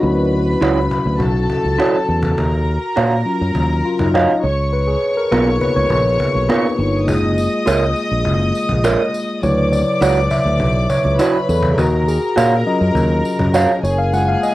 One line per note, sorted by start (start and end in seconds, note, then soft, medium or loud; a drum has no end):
0.00 0.55 D2 loud
0.00 0.87 F#3 soft
0.00 0.87 C#4 soft
0.00 0.29 D#4 medium
0.00 0.87 E4 medium
0.00 1.18 F#4 medium
0.00 0.29 A#4 medium
0.00 1.18 B4 medium
0.00 0.46 C#5 soft
0.00 0.63 D#5 medium
0.00 1.18 B5 medium
0.00 cajon slap soft
0.18 cajon slap soft
0.33 cajon slap soft
0.61 0.87 C#2 medium
0.61 0.78 E4 medium
0.61 0.79 F#4 medium
0.61 0.79 C#5 medium
0.61 cajon slap loud
0.91 cajon bass medium
1.06 1.19 D2 medium
1.19 1.46 B1 medium
1.19 2.63 F#4 medium
1.19 2.36 A4 medium
1.19 2.35 A5 loud
1.19 cajon bass medium
1.50 2.64 A4 medium
1.50 cajon bass medium
1.65 1.78 C#2 medium
1.78 1.96 E4 medium
1.78 1.96 F#4 medium
1.78 1.96 C#5 medium
1.78 cajon slap loud
2.08 2.34 E2 medium
2.08 cajon slap soft
2.23 cajon bass medium
2.38 2.77 D#2 medium
2.38 4.40 A#4 medium
2.38 4.40 A#5 loud
2.38 cajon bass loud
2.53 cajon slap soft
2.68 cajon slap soft
2.96 3.23 A#2 medium
2.96 3.13 F#4 medium
2.96 3.14 C#5 medium
2.96 3.14 F5 medium
2.96 cajon slap loud
3.25 4.10 F#3 medium
3.25 4.10 C#4 soft
3.25 3.84 F4 medium
3.25 cajon slap soft
3.41 3.54 F#2 medium
3.55 3.81 D#2 medium
3.55 cajon bass medium
3.85 4.00 F4 medium
3.85 cajon slap soft
3.99 4.25 F#2 medium
3.99 4.15 D#4 medium
3.99 cajon bass medium
4.14 4.31 F#4 medium
4.14 4.32 C#5 medium
4.14 4.45 D#5 loud
4.14 4.32 F5 medium
4.14 cajon slap loud
4.43 4.95 C#2 medium
4.43 7.04 C#5 medium
4.43 4.74 C#5 loud
4.43 7.04 C#6 medium
4.43 cajon slap soft
4.73 4.88 B4 medium
4.73 cajon slap soft
4.87 5.18 G#4 medium
4.87 cajon slap soft
5.02 cajon slap soft
5.17 5.63 A#4 medium
5.31 5.58 B1 medium
5.31 6.16 A#3 medium
5.31 5.48 B3 medium
5.31 6.16 B3 medium
5.31 6.16 D#4 soft
5.31 5.49 F4 medium
5.31 6.16 F4 medium
5.31 5.49 A#4 medium
5.31 cajon slap loud
5.61 5.77 B4 medium
5.61 cajon bass medium
5.75 5.89 C#2 medium
5.75 7.12 C#5 medium
5.75 cajon slap soft
5.90 6.16 A#1 medium
5.90 cajon bass medium
6.05 cajon slap soft
6.20 7.34 G#4 medium
6.20 cajon bass medium
6.35 6.48 B1 medium
6.49 6.76 A#3 soft
6.49 6.66 B3 medium
6.49 6.76 B3 soft
6.49 6.76 D#4 soft
6.49 6.66 F4 medium
6.49 6.76 F4 medium
6.49 6.66 A#4 medium
6.49 cajon slap loud
6.78 7.08 G1 medium
6.78 7.34 D#4 medium
6.78 cajon slap soft
7.08 7.47 F#1 loud
7.08 7.47 G#3 medium
7.08 7.47 A#3 soft
7.08 7.48 F4 medium
7.08 8.51 G#4 medium
7.08 9.39 D#5 medium
7.08 9.39 D#6 loud
7.08 cajon bass loud
7.08 tambourine soft
7.23 cajon slap soft
7.38 cajon slap soft
7.38 tambourine soft
7.66 7.93 C#2 medium
7.66 7.83 F4 medium
7.66 7.84 A#4 medium
7.66 7.84 C#5 medium
7.66 cajon slap loud
7.66 tambourine medium
7.96 cajon slap soft
7.96 tambourine soft
8.11 8.24 A#1 medium
8.25 8.51 F#1 medium
8.25 8.52 G#3 soft
8.25 8.52 A#3 soft
8.25 8.52 F4 medium
8.25 cajon bass medium
8.55 cajon slap soft
8.55 tambourine soft
8.69 8.95 A#1 medium
8.69 cajon bass medium
8.84 9.01 F4 medium
8.84 9.01 A#4 medium
8.84 9.02 C#5 medium
8.84 cajon slap loud
8.84 tambourine medium
9.13 cajon slap soft
9.13 tambourine medium
9.42 9.82 D2 loud
9.42 9.82 C#3 medium
9.42 9.82 F#3 medium
9.42 9.83 E4 medium
9.42 11.59 B4 medium
9.42 9.73 C#5 loud
9.42 11.15 D5 medium
9.42 11.16 D6 loud
9.42 cajon slap soft
9.42 tambourine soft
9.58 cajon slap soft
9.72 10.33 D5 loud
9.72 cajon slap soft
9.72 tambourine soft
10.01 10.27 C#2 medium
10.01 10.18 E4 medium
10.01 10.19 F#4 medium
10.01 10.19 C#5 medium
10.01 cajon slap loud
10.01 tambourine medium
10.31 10.92 E5 loud
10.31 cajon bass medium
10.31 tambourine soft
10.45 10.59 D2 medium
10.60 10.86 B1 medium
10.60 cajon bass loud
10.90 11.50 C#5 loud
10.90 cajon bass medium
10.90 tambourine soft
11.05 11.18 C#2 medium
11.19 11.36 E4 medium
11.19 11.36 F#4 medium
11.19 11.77 B4 medium
11.19 11.37 C#5 medium
11.19 11.77 B5 medium
11.19 cajon slap loud
11.19 tambourine medium
11.48 11.75 E2 medium
11.48 11.72 A4 medium
11.48 cajon slap soft
11.48 tambourine soft
11.63 cajon bass loud
11.72 11.78 G#4 medium
11.78 12.17 D#2 loud
11.78 12.08 F#4 medium
11.78 13.80 A#4 medium
11.78 13.79 A#5 loud
11.78 cajon bass loud
11.78 tambourine soft
11.93 cajon slap soft
12.08 12.35 G#4 medium
12.08 cajon slap soft
12.08 tambourine medium
12.36 12.63 A#2 medium
12.36 12.53 F#4 medium
12.36 12.67 A#4 medium
12.36 12.53 C#5 medium
12.36 12.54 F5 medium
12.36 cajon slap loud
12.36 tambourine medium
12.66 13.50 F#3 medium
12.66 13.50 C#4 medium
12.66 13.51 F4 medium
12.66 13.21 D#5 medium
12.66 cajon slap soft
12.81 12.94 F#2 medium
12.95 13.21 D#2 medium
12.95 cajon bass medium
12.95 tambourine soft
13.25 cajon slap soft
13.25 tambourine soft
13.39 13.65 F#2 medium
13.39 cajon bass loud
13.54 13.71 F#4 medium
13.54 14.09 A#4 medium
13.54 13.71 C#5 medium
13.54 13.71 F5 medium
13.54 cajon slap loud
13.54 tambourine medium
13.83 14.35 F#1 loud
13.83 14.54 G#4 medium
13.83 13.97 C#5 medium
13.83 14.54 G#5 loud
13.83 cajon slap soft
13.83 tambourine medium
13.98 14.13 F5 loud
14.12 14.54 G#3 medium
14.12 14.54 A#3 medium
14.12 14.54 F4 medium
14.12 14.28 F#5 loud
14.12 cajon slap medium
14.12 tambourine soft
14.28 14.43 F5 loud
14.28 cajon slap soft
14.43 14.54 D#5 loud
14.43 cajon slap soft
14.43 tambourine medium